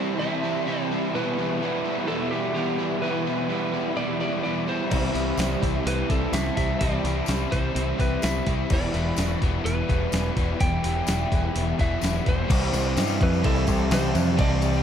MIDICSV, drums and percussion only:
0, 0, Header, 1, 2, 480
1, 0, Start_track
1, 0, Key_signature, 0, "major"
1, 0, Tempo, 473186
1, 1153, Time_signature, 4, 2, 24, 8
1, 15043, End_track
2, 0, Start_track
2, 0, Title_t, "Drums"
2, 4985, Note_on_c, 9, 36, 98
2, 4986, Note_on_c, 9, 49, 99
2, 5087, Note_off_c, 9, 36, 0
2, 5087, Note_off_c, 9, 49, 0
2, 5228, Note_on_c, 9, 46, 59
2, 5330, Note_off_c, 9, 46, 0
2, 5452, Note_on_c, 9, 54, 90
2, 5468, Note_on_c, 9, 46, 84
2, 5477, Note_on_c, 9, 38, 116
2, 5553, Note_off_c, 9, 54, 0
2, 5570, Note_off_c, 9, 46, 0
2, 5578, Note_off_c, 9, 38, 0
2, 5708, Note_on_c, 9, 36, 89
2, 5715, Note_on_c, 9, 46, 61
2, 5810, Note_off_c, 9, 36, 0
2, 5817, Note_off_c, 9, 46, 0
2, 5953, Note_on_c, 9, 46, 83
2, 6054, Note_off_c, 9, 46, 0
2, 6187, Note_on_c, 9, 36, 82
2, 6187, Note_on_c, 9, 46, 58
2, 6288, Note_off_c, 9, 46, 0
2, 6289, Note_off_c, 9, 36, 0
2, 6421, Note_on_c, 9, 54, 85
2, 6426, Note_on_c, 9, 46, 78
2, 6434, Note_on_c, 9, 38, 105
2, 6522, Note_off_c, 9, 54, 0
2, 6528, Note_off_c, 9, 46, 0
2, 6536, Note_off_c, 9, 38, 0
2, 6558, Note_on_c, 9, 38, 30
2, 6659, Note_off_c, 9, 38, 0
2, 6666, Note_on_c, 9, 46, 56
2, 6667, Note_on_c, 9, 36, 85
2, 6768, Note_off_c, 9, 46, 0
2, 6769, Note_off_c, 9, 36, 0
2, 6905, Note_on_c, 9, 46, 79
2, 6908, Note_on_c, 9, 36, 101
2, 7007, Note_off_c, 9, 46, 0
2, 7009, Note_off_c, 9, 36, 0
2, 7150, Note_on_c, 9, 46, 58
2, 7251, Note_off_c, 9, 46, 0
2, 7365, Note_on_c, 9, 54, 92
2, 7388, Note_on_c, 9, 46, 73
2, 7396, Note_on_c, 9, 38, 105
2, 7467, Note_off_c, 9, 54, 0
2, 7489, Note_off_c, 9, 46, 0
2, 7497, Note_off_c, 9, 38, 0
2, 7629, Note_on_c, 9, 36, 84
2, 7631, Note_on_c, 9, 46, 60
2, 7730, Note_off_c, 9, 36, 0
2, 7732, Note_off_c, 9, 46, 0
2, 7873, Note_on_c, 9, 46, 76
2, 7975, Note_off_c, 9, 46, 0
2, 8111, Note_on_c, 9, 36, 83
2, 8114, Note_on_c, 9, 46, 54
2, 8212, Note_off_c, 9, 36, 0
2, 8215, Note_off_c, 9, 46, 0
2, 8341, Note_on_c, 9, 54, 104
2, 8351, Note_on_c, 9, 46, 73
2, 8359, Note_on_c, 9, 38, 104
2, 8442, Note_off_c, 9, 54, 0
2, 8452, Note_off_c, 9, 46, 0
2, 8460, Note_off_c, 9, 38, 0
2, 8587, Note_on_c, 9, 46, 54
2, 8589, Note_on_c, 9, 36, 79
2, 8689, Note_off_c, 9, 46, 0
2, 8691, Note_off_c, 9, 36, 0
2, 8826, Note_on_c, 9, 49, 91
2, 8830, Note_on_c, 9, 36, 109
2, 8927, Note_off_c, 9, 49, 0
2, 8931, Note_off_c, 9, 36, 0
2, 9069, Note_on_c, 9, 46, 56
2, 9170, Note_off_c, 9, 46, 0
2, 9297, Note_on_c, 9, 54, 102
2, 9310, Note_on_c, 9, 46, 84
2, 9318, Note_on_c, 9, 38, 107
2, 9398, Note_off_c, 9, 54, 0
2, 9412, Note_off_c, 9, 46, 0
2, 9420, Note_off_c, 9, 38, 0
2, 9554, Note_on_c, 9, 36, 86
2, 9556, Note_on_c, 9, 46, 60
2, 9655, Note_off_c, 9, 36, 0
2, 9657, Note_off_c, 9, 46, 0
2, 9800, Note_on_c, 9, 46, 78
2, 9901, Note_off_c, 9, 46, 0
2, 10037, Note_on_c, 9, 36, 87
2, 10041, Note_on_c, 9, 46, 60
2, 10139, Note_off_c, 9, 36, 0
2, 10142, Note_off_c, 9, 46, 0
2, 10266, Note_on_c, 9, 54, 98
2, 10276, Note_on_c, 9, 46, 80
2, 10284, Note_on_c, 9, 38, 105
2, 10368, Note_off_c, 9, 54, 0
2, 10377, Note_off_c, 9, 46, 0
2, 10386, Note_off_c, 9, 38, 0
2, 10410, Note_on_c, 9, 38, 31
2, 10511, Note_off_c, 9, 38, 0
2, 10517, Note_on_c, 9, 36, 84
2, 10517, Note_on_c, 9, 46, 60
2, 10618, Note_off_c, 9, 46, 0
2, 10619, Note_off_c, 9, 36, 0
2, 10758, Note_on_c, 9, 46, 87
2, 10759, Note_on_c, 9, 36, 110
2, 10859, Note_off_c, 9, 46, 0
2, 10860, Note_off_c, 9, 36, 0
2, 10997, Note_on_c, 9, 46, 65
2, 11098, Note_off_c, 9, 46, 0
2, 11226, Note_on_c, 9, 54, 107
2, 11237, Note_on_c, 9, 46, 81
2, 11245, Note_on_c, 9, 38, 106
2, 11328, Note_off_c, 9, 54, 0
2, 11338, Note_off_c, 9, 46, 0
2, 11347, Note_off_c, 9, 38, 0
2, 11481, Note_on_c, 9, 36, 84
2, 11487, Note_on_c, 9, 46, 57
2, 11583, Note_off_c, 9, 36, 0
2, 11588, Note_off_c, 9, 46, 0
2, 11723, Note_on_c, 9, 46, 81
2, 11824, Note_off_c, 9, 46, 0
2, 11962, Note_on_c, 9, 36, 87
2, 11966, Note_on_c, 9, 46, 55
2, 12064, Note_off_c, 9, 36, 0
2, 12067, Note_off_c, 9, 46, 0
2, 12189, Note_on_c, 9, 54, 104
2, 12209, Note_on_c, 9, 46, 73
2, 12217, Note_on_c, 9, 38, 106
2, 12290, Note_off_c, 9, 54, 0
2, 12311, Note_off_c, 9, 46, 0
2, 12319, Note_off_c, 9, 38, 0
2, 12332, Note_on_c, 9, 38, 32
2, 12433, Note_off_c, 9, 38, 0
2, 12440, Note_on_c, 9, 46, 51
2, 12441, Note_on_c, 9, 36, 87
2, 12542, Note_off_c, 9, 36, 0
2, 12542, Note_off_c, 9, 46, 0
2, 12679, Note_on_c, 9, 54, 26
2, 12681, Note_on_c, 9, 36, 119
2, 12686, Note_on_c, 9, 49, 126
2, 12686, Note_on_c, 9, 57, 86
2, 12780, Note_off_c, 9, 54, 0
2, 12782, Note_off_c, 9, 36, 0
2, 12787, Note_off_c, 9, 49, 0
2, 12787, Note_off_c, 9, 57, 0
2, 12918, Note_on_c, 9, 54, 80
2, 12927, Note_on_c, 9, 57, 68
2, 13020, Note_off_c, 9, 54, 0
2, 13028, Note_off_c, 9, 57, 0
2, 13034, Note_on_c, 9, 54, 31
2, 13136, Note_off_c, 9, 54, 0
2, 13153, Note_on_c, 9, 54, 91
2, 13161, Note_on_c, 9, 57, 87
2, 13170, Note_on_c, 9, 38, 107
2, 13255, Note_off_c, 9, 54, 0
2, 13262, Note_on_c, 9, 54, 74
2, 13263, Note_off_c, 9, 57, 0
2, 13271, Note_off_c, 9, 38, 0
2, 13363, Note_off_c, 9, 54, 0
2, 13392, Note_on_c, 9, 54, 29
2, 13398, Note_on_c, 9, 36, 94
2, 13403, Note_on_c, 9, 57, 63
2, 13493, Note_off_c, 9, 54, 0
2, 13500, Note_off_c, 9, 36, 0
2, 13505, Note_off_c, 9, 57, 0
2, 13524, Note_on_c, 9, 54, 27
2, 13626, Note_off_c, 9, 54, 0
2, 13636, Note_on_c, 9, 36, 86
2, 13636, Note_on_c, 9, 57, 87
2, 13637, Note_on_c, 9, 54, 26
2, 13738, Note_off_c, 9, 36, 0
2, 13738, Note_off_c, 9, 57, 0
2, 13739, Note_off_c, 9, 54, 0
2, 13754, Note_on_c, 9, 54, 30
2, 13856, Note_off_c, 9, 54, 0
2, 13866, Note_on_c, 9, 54, 75
2, 13875, Note_on_c, 9, 36, 83
2, 13875, Note_on_c, 9, 57, 69
2, 13967, Note_off_c, 9, 54, 0
2, 13976, Note_off_c, 9, 36, 0
2, 13976, Note_off_c, 9, 57, 0
2, 14112, Note_on_c, 9, 54, 94
2, 14113, Note_on_c, 9, 57, 86
2, 14121, Note_on_c, 9, 38, 105
2, 14213, Note_off_c, 9, 54, 0
2, 14215, Note_off_c, 9, 57, 0
2, 14223, Note_off_c, 9, 38, 0
2, 14353, Note_on_c, 9, 54, 67
2, 14354, Note_on_c, 9, 57, 64
2, 14454, Note_off_c, 9, 54, 0
2, 14456, Note_off_c, 9, 57, 0
2, 14476, Note_on_c, 9, 54, 25
2, 14578, Note_off_c, 9, 54, 0
2, 14592, Note_on_c, 9, 54, 25
2, 14594, Note_on_c, 9, 36, 114
2, 14594, Note_on_c, 9, 57, 91
2, 14694, Note_off_c, 9, 54, 0
2, 14695, Note_off_c, 9, 57, 0
2, 14696, Note_off_c, 9, 36, 0
2, 14829, Note_on_c, 9, 54, 69
2, 14833, Note_on_c, 9, 57, 64
2, 14930, Note_off_c, 9, 54, 0
2, 14935, Note_off_c, 9, 57, 0
2, 14946, Note_on_c, 9, 54, 28
2, 15043, Note_off_c, 9, 54, 0
2, 15043, End_track
0, 0, End_of_file